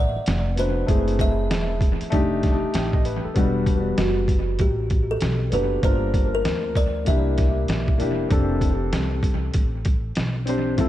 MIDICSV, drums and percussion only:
0, 0, Header, 1, 2, 480
1, 0, Start_track
1, 0, Tempo, 618557
1, 685, Time_signature, 4, 2, 24, 8
1, 8448, End_track
2, 0, Start_track
2, 0, Title_t, "Drums"
2, 204, Note_on_c, 9, 42, 91
2, 215, Note_on_c, 9, 38, 102
2, 281, Note_off_c, 9, 42, 0
2, 293, Note_off_c, 9, 38, 0
2, 446, Note_on_c, 9, 42, 69
2, 523, Note_off_c, 9, 42, 0
2, 686, Note_on_c, 9, 36, 114
2, 687, Note_on_c, 9, 42, 96
2, 764, Note_off_c, 9, 36, 0
2, 765, Note_off_c, 9, 42, 0
2, 836, Note_on_c, 9, 42, 51
2, 913, Note_off_c, 9, 42, 0
2, 924, Note_on_c, 9, 36, 89
2, 928, Note_on_c, 9, 42, 86
2, 1002, Note_off_c, 9, 36, 0
2, 1006, Note_off_c, 9, 42, 0
2, 1170, Note_on_c, 9, 42, 93
2, 1172, Note_on_c, 9, 38, 110
2, 1247, Note_off_c, 9, 42, 0
2, 1249, Note_off_c, 9, 38, 0
2, 1403, Note_on_c, 9, 36, 97
2, 1410, Note_on_c, 9, 42, 78
2, 1480, Note_off_c, 9, 36, 0
2, 1488, Note_off_c, 9, 42, 0
2, 1558, Note_on_c, 9, 42, 53
2, 1636, Note_off_c, 9, 42, 0
2, 1644, Note_on_c, 9, 42, 91
2, 1648, Note_on_c, 9, 36, 94
2, 1722, Note_off_c, 9, 42, 0
2, 1726, Note_off_c, 9, 36, 0
2, 1886, Note_on_c, 9, 42, 63
2, 1891, Note_on_c, 9, 36, 96
2, 1894, Note_on_c, 9, 38, 38
2, 1964, Note_off_c, 9, 42, 0
2, 1968, Note_off_c, 9, 36, 0
2, 1972, Note_off_c, 9, 38, 0
2, 2124, Note_on_c, 9, 42, 86
2, 2135, Note_on_c, 9, 38, 99
2, 2202, Note_off_c, 9, 42, 0
2, 2213, Note_off_c, 9, 38, 0
2, 2276, Note_on_c, 9, 36, 80
2, 2354, Note_off_c, 9, 36, 0
2, 2367, Note_on_c, 9, 42, 67
2, 2444, Note_off_c, 9, 42, 0
2, 2605, Note_on_c, 9, 42, 90
2, 2606, Note_on_c, 9, 36, 103
2, 2682, Note_off_c, 9, 42, 0
2, 2683, Note_off_c, 9, 36, 0
2, 2844, Note_on_c, 9, 36, 86
2, 2847, Note_on_c, 9, 42, 87
2, 2921, Note_off_c, 9, 36, 0
2, 2924, Note_off_c, 9, 42, 0
2, 3086, Note_on_c, 9, 42, 88
2, 3088, Note_on_c, 9, 38, 109
2, 3164, Note_off_c, 9, 42, 0
2, 3165, Note_off_c, 9, 38, 0
2, 3321, Note_on_c, 9, 36, 90
2, 3328, Note_on_c, 9, 42, 75
2, 3399, Note_off_c, 9, 36, 0
2, 3405, Note_off_c, 9, 42, 0
2, 3559, Note_on_c, 9, 42, 92
2, 3566, Note_on_c, 9, 36, 95
2, 3637, Note_off_c, 9, 42, 0
2, 3644, Note_off_c, 9, 36, 0
2, 3803, Note_on_c, 9, 42, 62
2, 3809, Note_on_c, 9, 36, 95
2, 3880, Note_off_c, 9, 42, 0
2, 3886, Note_off_c, 9, 36, 0
2, 4039, Note_on_c, 9, 42, 86
2, 4051, Note_on_c, 9, 38, 103
2, 4117, Note_off_c, 9, 42, 0
2, 4128, Note_off_c, 9, 38, 0
2, 4283, Note_on_c, 9, 42, 66
2, 4360, Note_off_c, 9, 42, 0
2, 4524, Note_on_c, 9, 42, 88
2, 4525, Note_on_c, 9, 36, 113
2, 4602, Note_off_c, 9, 42, 0
2, 4603, Note_off_c, 9, 36, 0
2, 4763, Note_on_c, 9, 36, 91
2, 4766, Note_on_c, 9, 42, 86
2, 4841, Note_off_c, 9, 36, 0
2, 4844, Note_off_c, 9, 42, 0
2, 5005, Note_on_c, 9, 42, 85
2, 5007, Note_on_c, 9, 38, 105
2, 5083, Note_off_c, 9, 42, 0
2, 5084, Note_off_c, 9, 38, 0
2, 5241, Note_on_c, 9, 36, 88
2, 5249, Note_on_c, 9, 42, 73
2, 5319, Note_off_c, 9, 36, 0
2, 5326, Note_off_c, 9, 42, 0
2, 5480, Note_on_c, 9, 42, 94
2, 5487, Note_on_c, 9, 36, 88
2, 5558, Note_off_c, 9, 42, 0
2, 5564, Note_off_c, 9, 36, 0
2, 5724, Note_on_c, 9, 42, 62
2, 5729, Note_on_c, 9, 36, 95
2, 5732, Note_on_c, 9, 38, 33
2, 5801, Note_off_c, 9, 42, 0
2, 5807, Note_off_c, 9, 36, 0
2, 5809, Note_off_c, 9, 38, 0
2, 5962, Note_on_c, 9, 42, 84
2, 5973, Note_on_c, 9, 38, 97
2, 6040, Note_off_c, 9, 42, 0
2, 6051, Note_off_c, 9, 38, 0
2, 6115, Note_on_c, 9, 36, 76
2, 6192, Note_off_c, 9, 36, 0
2, 6206, Note_on_c, 9, 42, 68
2, 6283, Note_off_c, 9, 42, 0
2, 6445, Note_on_c, 9, 36, 110
2, 6445, Note_on_c, 9, 42, 90
2, 6522, Note_off_c, 9, 42, 0
2, 6523, Note_off_c, 9, 36, 0
2, 6683, Note_on_c, 9, 36, 86
2, 6686, Note_on_c, 9, 42, 83
2, 6761, Note_off_c, 9, 36, 0
2, 6764, Note_off_c, 9, 42, 0
2, 6926, Note_on_c, 9, 42, 83
2, 6928, Note_on_c, 9, 38, 102
2, 7004, Note_off_c, 9, 42, 0
2, 7006, Note_off_c, 9, 38, 0
2, 7161, Note_on_c, 9, 36, 92
2, 7168, Note_on_c, 9, 42, 72
2, 7238, Note_off_c, 9, 36, 0
2, 7246, Note_off_c, 9, 42, 0
2, 7399, Note_on_c, 9, 42, 100
2, 7406, Note_on_c, 9, 36, 97
2, 7477, Note_off_c, 9, 42, 0
2, 7484, Note_off_c, 9, 36, 0
2, 7642, Note_on_c, 9, 42, 61
2, 7648, Note_on_c, 9, 36, 98
2, 7719, Note_off_c, 9, 42, 0
2, 7726, Note_off_c, 9, 36, 0
2, 7879, Note_on_c, 9, 42, 83
2, 7891, Note_on_c, 9, 38, 98
2, 7957, Note_off_c, 9, 42, 0
2, 7968, Note_off_c, 9, 38, 0
2, 8124, Note_on_c, 9, 42, 64
2, 8202, Note_off_c, 9, 42, 0
2, 8364, Note_on_c, 9, 42, 91
2, 8365, Note_on_c, 9, 36, 112
2, 8442, Note_off_c, 9, 42, 0
2, 8443, Note_off_c, 9, 36, 0
2, 8448, End_track
0, 0, End_of_file